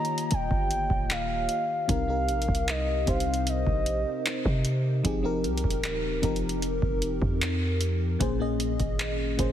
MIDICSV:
0, 0, Header, 1, 5, 480
1, 0, Start_track
1, 0, Tempo, 789474
1, 1148, Time_signature, 4, 2, 24, 8
1, 5789, End_track
2, 0, Start_track
2, 0, Title_t, "Soft synth lead"
2, 0, Program_c, 0, 80
2, 0, Note_on_c, 0, 82, 113
2, 203, Note_on_c, 0, 79, 105
2, 212, Note_off_c, 0, 82, 0
2, 679, Note_on_c, 0, 77, 99
2, 688, Note_off_c, 0, 79, 0
2, 1153, Note_off_c, 0, 77, 0
2, 1157, Note_on_c, 0, 77, 100
2, 1640, Note_on_c, 0, 75, 85
2, 1650, Note_off_c, 0, 77, 0
2, 1878, Note_on_c, 0, 77, 87
2, 1887, Note_off_c, 0, 75, 0
2, 2113, Note_off_c, 0, 77, 0
2, 2119, Note_on_c, 0, 75, 83
2, 2809, Note_off_c, 0, 75, 0
2, 5789, End_track
3, 0, Start_track
3, 0, Title_t, "FM electric piano"
3, 0, Program_c, 1, 5
3, 0, Control_c, 1, 64, 127
3, 0, Note_on_c, 1, 51, 73
3, 0, Note_on_c, 1, 58, 64
3, 0, Note_on_c, 1, 65, 65
3, 0, Note_on_c, 1, 67, 62
3, 0, Note_on_c, 1, 73, 76
3, 0, Note_on_c, 1, 75, 75
3, 800, Note_off_c, 1, 51, 0
3, 803, Note_off_c, 1, 58, 0
3, 805, Note_off_c, 1, 65, 0
3, 807, Note_off_c, 1, 67, 0
3, 809, Note_off_c, 1, 75, 0
3, 1141, Note_on_c, 1, 48, 72
3, 1144, Note_on_c, 1, 60, 63
3, 1149, Note_on_c, 1, 63, 67
3, 1153, Note_on_c, 1, 67, 63
3, 1156, Control_c, 1, 64, 0
3, 1158, Note_off_c, 1, 73, 0
3, 1158, Note_on_c, 1, 70, 81
3, 1251, Note_off_c, 1, 48, 0
3, 1253, Note_off_c, 1, 60, 0
3, 1254, Control_c, 1, 64, 127
3, 1256, Note_off_c, 1, 63, 0
3, 1258, Note_off_c, 1, 67, 0
3, 1259, Note_on_c, 1, 48, 67
3, 1260, Note_off_c, 1, 70, 0
3, 1264, Note_on_c, 1, 60, 64
3, 1268, Note_on_c, 1, 63, 66
3, 1272, Note_on_c, 1, 67, 63
3, 1276, Note_on_c, 1, 70, 78
3, 1799, Note_off_c, 1, 48, 0
3, 1801, Note_off_c, 1, 60, 0
3, 1803, Note_off_c, 1, 63, 0
3, 1805, Note_off_c, 1, 67, 0
3, 1807, Note_off_c, 1, 70, 0
3, 1860, Note_on_c, 1, 48, 72
3, 1864, Note_on_c, 1, 60, 64
3, 1868, Note_on_c, 1, 63, 62
3, 1873, Note_on_c, 1, 67, 67
3, 1876, Note_on_c, 1, 72, 82
3, 2720, Note_off_c, 1, 48, 0
3, 2722, Note_off_c, 1, 60, 0
3, 2724, Note_off_c, 1, 63, 0
3, 2726, Note_off_c, 1, 67, 0
3, 2728, Note_off_c, 1, 72, 0
3, 3061, Note_on_c, 1, 53, 87
3, 3066, Note_on_c, 1, 60, 81
3, 3069, Note_on_c, 1, 63, 80
3, 3074, Note_on_c, 1, 67, 75
3, 3075, Control_c, 1, 64, 0
3, 3077, Note_on_c, 1, 68, 91
3, 3171, Note_off_c, 1, 53, 0
3, 3174, Note_off_c, 1, 60, 0
3, 3175, Note_off_c, 1, 63, 0
3, 3178, Note_off_c, 1, 67, 0
3, 3179, Note_off_c, 1, 68, 0
3, 3179, Note_on_c, 1, 53, 82
3, 3183, Note_on_c, 1, 60, 77
3, 3188, Note_on_c, 1, 63, 79
3, 3191, Note_on_c, 1, 67, 81
3, 3195, Note_on_c, 1, 70, 99
3, 3199, Control_c, 1, 64, 127
3, 3718, Note_off_c, 1, 53, 0
3, 3720, Note_off_c, 1, 60, 0
3, 3723, Note_off_c, 1, 63, 0
3, 3724, Note_off_c, 1, 67, 0
3, 3726, Note_off_c, 1, 70, 0
3, 3780, Note_on_c, 1, 53, 85
3, 3784, Note_on_c, 1, 60, 82
3, 3789, Note_on_c, 1, 63, 76
3, 3793, Note_on_c, 1, 67, 75
3, 3796, Note_on_c, 1, 70, 93
3, 4640, Note_off_c, 1, 53, 0
3, 4642, Note_off_c, 1, 60, 0
3, 4644, Note_off_c, 1, 63, 0
3, 4646, Note_off_c, 1, 67, 0
3, 4648, Note_off_c, 1, 70, 0
3, 4980, Note_on_c, 1, 46, 89
3, 4984, Note_on_c, 1, 58, 78
3, 4989, Note_on_c, 1, 61, 75
3, 4993, Note_on_c, 1, 68, 80
3, 4995, Control_c, 1, 64, 0
3, 4997, Note_on_c, 1, 72, 90
3, 5091, Note_off_c, 1, 46, 0
3, 5093, Note_off_c, 1, 58, 0
3, 5095, Note_off_c, 1, 61, 0
3, 5097, Note_off_c, 1, 68, 0
3, 5100, Note_off_c, 1, 72, 0
3, 5100, Note_on_c, 1, 46, 84
3, 5102, Control_c, 1, 64, 127
3, 5105, Note_on_c, 1, 58, 75
3, 5108, Note_on_c, 1, 61, 75
3, 5113, Note_on_c, 1, 68, 75
3, 5117, Note_on_c, 1, 75, 92
3, 5639, Note_off_c, 1, 46, 0
3, 5642, Note_off_c, 1, 58, 0
3, 5643, Note_off_c, 1, 61, 0
3, 5646, Note_off_c, 1, 68, 0
3, 5648, Note_off_c, 1, 75, 0
3, 5699, Note_on_c, 1, 46, 80
3, 5703, Note_on_c, 1, 58, 75
3, 5708, Note_on_c, 1, 61, 72
3, 5712, Note_on_c, 1, 68, 75
3, 5717, Note_on_c, 1, 72, 93
3, 5789, Note_off_c, 1, 46, 0
3, 5789, Note_off_c, 1, 58, 0
3, 5789, Note_off_c, 1, 61, 0
3, 5789, Note_off_c, 1, 68, 0
3, 5789, Note_off_c, 1, 72, 0
3, 5789, End_track
4, 0, Start_track
4, 0, Title_t, "808-style bass"
4, 0, Program_c, 2, 38
4, 193, Note_on_c, 2, 27, 103
4, 304, Note_off_c, 2, 27, 0
4, 311, Note_on_c, 2, 31, 98
4, 540, Note_off_c, 2, 31, 0
4, 550, Note_on_c, 2, 27, 98
4, 894, Note_off_c, 2, 27, 0
4, 1150, Note_on_c, 2, 36, 105
4, 1391, Note_on_c, 2, 34, 90
4, 1400, Note_off_c, 2, 36, 0
4, 1504, Note_off_c, 2, 34, 0
4, 1511, Note_on_c, 2, 36, 94
4, 1855, Note_off_c, 2, 36, 0
4, 1871, Note_on_c, 2, 36, 101
4, 2215, Note_off_c, 2, 36, 0
4, 2231, Note_on_c, 2, 34, 91
4, 2460, Note_off_c, 2, 34, 0
4, 2709, Note_on_c, 2, 48, 93
4, 3054, Note_off_c, 2, 48, 0
4, 3070, Note_on_c, 2, 29, 102
4, 3311, Note_on_c, 2, 36, 97
4, 3321, Note_off_c, 2, 29, 0
4, 3424, Note_off_c, 2, 36, 0
4, 3432, Note_on_c, 2, 27, 98
4, 3775, Note_off_c, 2, 27, 0
4, 3791, Note_on_c, 2, 29, 101
4, 4135, Note_off_c, 2, 29, 0
4, 4150, Note_on_c, 2, 29, 96
4, 4379, Note_off_c, 2, 29, 0
4, 4389, Note_on_c, 2, 41, 95
4, 4965, Note_off_c, 2, 41, 0
4, 4990, Note_on_c, 2, 34, 104
4, 5334, Note_off_c, 2, 34, 0
4, 5350, Note_on_c, 2, 32, 97
4, 5695, Note_off_c, 2, 32, 0
4, 5711, Note_on_c, 2, 34, 96
4, 5789, Note_off_c, 2, 34, 0
4, 5789, End_track
5, 0, Start_track
5, 0, Title_t, "Drums"
5, 29, Note_on_c, 9, 42, 61
5, 90, Note_off_c, 9, 42, 0
5, 108, Note_on_c, 9, 42, 64
5, 169, Note_off_c, 9, 42, 0
5, 187, Note_on_c, 9, 42, 85
5, 247, Note_off_c, 9, 42, 0
5, 309, Note_on_c, 9, 36, 94
5, 370, Note_off_c, 9, 36, 0
5, 429, Note_on_c, 9, 42, 68
5, 490, Note_off_c, 9, 42, 0
5, 548, Note_on_c, 9, 36, 86
5, 609, Note_off_c, 9, 36, 0
5, 671, Note_on_c, 9, 42, 48
5, 672, Note_on_c, 9, 39, 101
5, 732, Note_off_c, 9, 42, 0
5, 733, Note_off_c, 9, 39, 0
5, 904, Note_on_c, 9, 42, 67
5, 965, Note_off_c, 9, 42, 0
5, 1149, Note_on_c, 9, 36, 97
5, 1149, Note_on_c, 9, 42, 81
5, 1209, Note_off_c, 9, 36, 0
5, 1210, Note_off_c, 9, 42, 0
5, 1389, Note_on_c, 9, 42, 54
5, 1450, Note_off_c, 9, 42, 0
5, 1469, Note_on_c, 9, 42, 57
5, 1510, Note_on_c, 9, 36, 81
5, 1530, Note_off_c, 9, 42, 0
5, 1549, Note_on_c, 9, 42, 56
5, 1570, Note_off_c, 9, 36, 0
5, 1609, Note_off_c, 9, 42, 0
5, 1628, Note_on_c, 9, 42, 75
5, 1633, Note_on_c, 9, 39, 102
5, 1689, Note_off_c, 9, 42, 0
5, 1694, Note_off_c, 9, 39, 0
5, 1868, Note_on_c, 9, 42, 62
5, 1869, Note_on_c, 9, 36, 86
5, 1929, Note_off_c, 9, 42, 0
5, 1930, Note_off_c, 9, 36, 0
5, 1948, Note_on_c, 9, 42, 63
5, 2008, Note_off_c, 9, 42, 0
5, 2028, Note_on_c, 9, 42, 64
5, 2089, Note_off_c, 9, 42, 0
5, 2108, Note_on_c, 9, 42, 80
5, 2169, Note_off_c, 9, 42, 0
5, 2229, Note_on_c, 9, 36, 94
5, 2290, Note_off_c, 9, 36, 0
5, 2348, Note_on_c, 9, 42, 65
5, 2409, Note_off_c, 9, 42, 0
5, 2591, Note_on_c, 9, 42, 51
5, 2592, Note_on_c, 9, 39, 100
5, 2652, Note_off_c, 9, 42, 0
5, 2653, Note_off_c, 9, 39, 0
5, 2707, Note_on_c, 9, 36, 90
5, 2768, Note_off_c, 9, 36, 0
5, 2825, Note_on_c, 9, 42, 70
5, 2886, Note_off_c, 9, 42, 0
5, 3068, Note_on_c, 9, 36, 97
5, 3069, Note_on_c, 9, 42, 82
5, 3129, Note_off_c, 9, 36, 0
5, 3129, Note_off_c, 9, 42, 0
5, 3309, Note_on_c, 9, 42, 57
5, 3370, Note_off_c, 9, 42, 0
5, 3390, Note_on_c, 9, 42, 57
5, 3430, Note_on_c, 9, 36, 82
5, 3450, Note_off_c, 9, 42, 0
5, 3469, Note_on_c, 9, 42, 54
5, 3490, Note_off_c, 9, 36, 0
5, 3529, Note_off_c, 9, 42, 0
5, 3548, Note_on_c, 9, 42, 73
5, 3553, Note_on_c, 9, 39, 101
5, 3608, Note_off_c, 9, 42, 0
5, 3613, Note_off_c, 9, 39, 0
5, 3788, Note_on_c, 9, 42, 62
5, 3789, Note_on_c, 9, 36, 89
5, 3849, Note_off_c, 9, 42, 0
5, 3850, Note_off_c, 9, 36, 0
5, 3867, Note_on_c, 9, 42, 59
5, 3928, Note_off_c, 9, 42, 0
5, 3948, Note_on_c, 9, 42, 65
5, 4008, Note_off_c, 9, 42, 0
5, 4027, Note_on_c, 9, 42, 81
5, 4088, Note_off_c, 9, 42, 0
5, 4148, Note_on_c, 9, 36, 93
5, 4209, Note_off_c, 9, 36, 0
5, 4268, Note_on_c, 9, 42, 62
5, 4329, Note_off_c, 9, 42, 0
5, 4387, Note_on_c, 9, 36, 91
5, 4448, Note_off_c, 9, 36, 0
5, 4511, Note_on_c, 9, 42, 55
5, 4512, Note_on_c, 9, 39, 103
5, 4572, Note_off_c, 9, 42, 0
5, 4573, Note_off_c, 9, 39, 0
5, 4746, Note_on_c, 9, 42, 68
5, 4807, Note_off_c, 9, 42, 0
5, 4988, Note_on_c, 9, 36, 100
5, 4989, Note_on_c, 9, 42, 81
5, 5049, Note_off_c, 9, 36, 0
5, 5050, Note_off_c, 9, 42, 0
5, 5228, Note_on_c, 9, 42, 69
5, 5289, Note_off_c, 9, 42, 0
5, 5348, Note_on_c, 9, 42, 38
5, 5349, Note_on_c, 9, 36, 81
5, 5408, Note_off_c, 9, 42, 0
5, 5409, Note_off_c, 9, 36, 0
5, 5468, Note_on_c, 9, 42, 79
5, 5473, Note_on_c, 9, 39, 101
5, 5528, Note_off_c, 9, 42, 0
5, 5533, Note_off_c, 9, 39, 0
5, 5708, Note_on_c, 9, 42, 71
5, 5709, Note_on_c, 9, 36, 91
5, 5769, Note_off_c, 9, 42, 0
5, 5770, Note_off_c, 9, 36, 0
5, 5789, End_track
0, 0, End_of_file